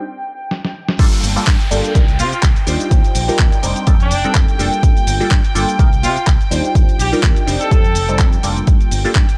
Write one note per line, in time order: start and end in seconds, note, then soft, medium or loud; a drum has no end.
0.00 0.98 G5 medium
0.51 snare medium
0.65 snare medium
0.89 snare medium
0.99 1.08 G2 loud
0.99 1.31 G3 loud
0.99 1.31 A#3 medium
0.99 1.31 D4 medium
0.99 1.31 F4 medium
0.99 1.31 A4 loud
0.99 8.66 G5 medium
0.99 kick loud
0.99 closed hi-hat medium
0.99 crash loud
0.99 downlifter medium
0.99 shaker soft
1.13 closed hi-hat soft
1.13 shaker soft
1.23 1.36 G1 medium
1.23 open hi-hat loud
1.23 shaker medium
1.36 1.43 G3 medium
1.36 1.43 A#3 medium
1.36 1.43 D4 medium
1.36 1.43 F4 medium
1.36 1.44 A4 loud
1.36 muted fingered electric bass stroke soft
1.36 shaker soft
1.47 1.56 G2 loud
1.47 kick loud
1.47 clap loud
1.47 closed hi-hat medium
1.47 shaker soft
1.61 closed hi-hat medium
1.61 shaker soft
1.71 1.80 G1 medium
1.71 1.92 G3 medium
1.71 1.92 A#3 medium
1.71 1.93 D4 medium
1.71 1.93 F4 medium
1.71 1.93 A4 loud
1.71 open hi-hat loud
1.71 shaker medium
1.85 closed hi-hat medium
1.85 shaker soft
1.95 2.21 C2 medium
1.95 2.04 G3 medium
1.95 2.04 D4 medium
1.95 2.04 D#4 medium
1.95 2.04 F4 medium
1.95 2.04 A#4 loud
1.95 kick loud
1.95 closed hi-hat medium
1.95 shaker soft
2.08 closed hi-hat soft
2.08 shaker soft
2.19 2.32 C3 medium
2.19 2.28 F4 medium
2.19 open hi-hat loud
2.19 shaker medium
2.32 2.39 F4 medium
2.32 muted fingered electric bass stroke soft
2.32 closed hi-hat soft
2.32 shaker soft
2.43 2.52 C2 medium
2.43 kick loud
2.43 clap loud
2.43 closed hi-hat medium
2.43 shaker soft
2.56 closed hi-hat soft
2.56 shaker soft
2.66 2.76 D#2 medium
2.66 3.25 G3 medium
2.66 3.25 D4 medium
2.66 3.25 D#4 medium
2.66 3.26 F4 medium
2.66 3.26 C5 loud
2.66 open hi-hat loud
2.66 shaker medium
2.80 closed hi-hat soft
2.80 shaker soft
2.91 3.00 D#2 loud
2.91 kick loud
2.91 closed hi-hat medium
2.91 shaker soft
3.04 closed hi-hat soft
3.04 shaker soft
3.15 3.28 A#1 medium
3.15 open hi-hat loud
3.15 shaker medium
3.28 3.60 G3 loud
3.28 3.61 D4 medium
3.28 3.61 D#4 medium
3.28 3.61 F4 medium
3.28 3.61 A#4 loud
3.28 muted fingered electric bass stroke soft
3.28 shaker soft
3.39 3.48 D#2 loud
3.39 kick loud
3.39 clap loud
3.39 closed hi-hat medium
3.39 shaker soft
3.52 closed hi-hat medium
3.52 shaker soft
3.63 3.72 F1 medium
3.63 3.84 G3 medium
3.63 3.85 C4 medium
3.63 3.85 D4 medium
3.63 3.85 D#4 medium
3.63 3.85 C5 loud
3.63 open hi-hat loud
3.63 shaker medium
3.76 closed hi-hat medium
3.76 shaker soft
3.87 4.13 F2 medium
3.87 3.96 G3 loud
3.87 3.96 C4 medium
3.87 3.96 D4 medium
3.87 3.96 D#4 medium
3.87 3.96 A4 loud
3.87 kick loud
3.87 closed hi-hat medium
3.87 shaker soft
4.00 4.35 D4 medium
4.00 closed hi-hat soft
4.00 shaker soft
4.11 4.24 F1 medium
4.11 open hi-hat loud
4.11 shaker medium
4.24 4.57 G3 medium
4.24 4.57 C4 medium
4.24 4.57 D4 medium
4.24 4.57 D#4 medium
4.24 4.57 A4 medium
4.24 muted fingered electric bass stroke soft
4.24 closed hi-hat soft
4.24 shaker soft
4.35 4.44 F2 medium
4.35 kick loud
4.35 clap loud
4.35 closed hi-hat medium
4.35 shaker soft
4.48 closed hi-hat soft
4.48 shaker soft
4.58 4.68 F1 medium
4.58 5.17 G3 medium
4.58 5.17 A#3 medium
4.58 5.17 D4 medium
4.58 5.18 F4 medium
4.58 5.18 A4 medium
4.58 open hi-hat loud
4.58 shaker medium
4.73 closed hi-hat soft
4.73 shaker soft
4.83 4.92 G2 loud
4.83 kick loud
4.83 closed hi-hat medium
4.83 shaker soft
4.97 closed hi-hat soft
4.97 shaker soft
5.07 5.20 G1 loud
5.07 open hi-hat loud
5.07 shaker medium
5.20 5.27 G3 medium
5.20 5.27 A#3 medium
5.20 5.27 D4 medium
5.20 5.28 F4 medium
5.20 5.28 A4 loud
5.20 muted fingered electric bass stroke soft
5.20 shaker soft
5.31 5.40 G2 loud
5.31 kick loud
5.31 clap loud
5.31 closed hi-hat medium
5.31 shaker soft
5.45 closed hi-hat medium
5.45 shaker soft
5.55 5.64 G1 medium
5.55 5.76 G3 medium
5.55 5.77 A#3 medium
5.55 5.77 D4 medium
5.55 5.77 F4 medium
5.55 5.77 A4 loud
5.55 open hi-hat loud
5.55 shaker medium
5.69 closed hi-hat medium
5.69 shaker soft
5.79 6.05 C2 medium
5.79 5.88 G3 medium
5.79 5.88 D4 medium
5.79 5.88 D#4 medium
5.79 5.88 F4 medium
5.79 5.88 A#4 loud
5.79 kick loud
5.79 closed hi-hat medium
5.79 shaker soft
5.93 closed hi-hat soft
5.93 shaker soft
6.03 6.16 C3 medium
6.03 6.12 F4 medium
6.03 open hi-hat loud
6.03 shaker medium
6.16 6.23 F4 medium
6.16 muted fingered electric bass stroke soft
6.16 closed hi-hat soft
6.16 shaker soft
6.27 6.36 C2 medium
6.27 kick loud
6.27 clap loud
6.27 closed hi-hat medium
6.27 shaker soft
6.41 closed hi-hat soft
6.41 shaker soft
6.50 6.60 D#2 medium
6.50 7.09 G3 medium
6.50 7.09 D4 medium
6.50 7.09 D#4 medium
6.50 7.10 F4 medium
6.50 7.10 C5 loud
6.50 open hi-hat loud
6.50 shaker medium
6.65 closed hi-hat soft
6.65 shaker soft
6.75 6.84 D#2 loud
6.75 kick loud
6.75 closed hi-hat medium
6.75 shaker soft
6.89 closed hi-hat soft
6.89 shaker soft
6.99 7.12 A#1 medium
6.99 7.14 G4 medium
6.99 open hi-hat loud
6.99 shaker medium
7.12 7.45 G3 loud
7.12 7.45 D4 medium
7.12 7.45 D#4 medium
7.12 7.45 F4 medium
7.12 7.45 A#4 loud
7.12 muted fingered electric bass stroke soft
7.12 shaker soft
7.23 7.32 D#2 loud
7.23 kick loud
7.23 clap loud
7.23 closed hi-hat medium
7.23 shaker soft
7.36 closed hi-hat medium
7.36 shaker soft
7.47 7.56 F1 medium
7.47 7.68 G3 medium
7.47 7.69 C4 medium
7.47 7.69 D4 medium
7.47 7.69 D#4 medium
7.47 7.69 C5 loud
7.47 open hi-hat loud
7.47 shaker medium
7.60 8.27 A4 loud
7.60 closed hi-hat medium
7.60 shaker soft
7.71 7.97 F2 medium
7.71 7.80 G3 loud
7.71 7.80 C4 medium
7.71 7.80 D4 medium
7.71 7.80 D#4 medium
7.71 7.80 A4 loud
7.71 kick loud
7.71 closed hi-hat medium
7.71 shaker soft
7.84 closed hi-hat soft
7.84 shaker soft
7.95 8.21 F1 medium
7.95 open hi-hat loud
7.95 shaker medium
8.08 8.41 G3 medium
8.08 8.41 C4 medium
8.08 8.41 D4 medium
8.08 8.41 D#4 medium
8.08 8.41 A4 medium
8.08 closed hi-hat soft
8.08 shaker soft
8.19 8.36 F2 medium
8.19 kick loud
8.19 clap loud
8.19 closed hi-hat medium
8.19 shaker soft
8.32 closed hi-hat soft
8.32 shaker soft
8.43 8.60 F1 medium
8.43 9.01 G3 medium
8.43 9.02 A#3 medium
8.43 9.02 D4 medium
8.43 9.02 F4 medium
8.43 9.02 A4 medium
8.43 open hi-hat loud
8.43 shaker medium
8.57 closed hi-hat soft
8.57 shaker soft
8.67 8.76 G2 loud
8.67 9.38 G5 medium
8.67 kick loud
8.67 closed hi-hat medium
8.67 shaker soft
8.80 closed hi-hat soft
8.80 shaker soft
8.91 9.04 G1 loud
8.91 open hi-hat loud
8.91 shaker medium
9.04 9.11 G3 medium
9.04 9.12 A#3 medium
9.04 9.12 D4 medium
9.04 9.12 F4 medium
9.04 9.12 A4 loud
9.04 muted fingered electric bass stroke soft
9.04 shaker soft
9.15 9.24 G2 loud
9.15 kick loud
9.15 clap loud
9.15 closed hi-hat medium
9.15 shaker soft
9.29 closed hi-hat medium
9.29 shaker soft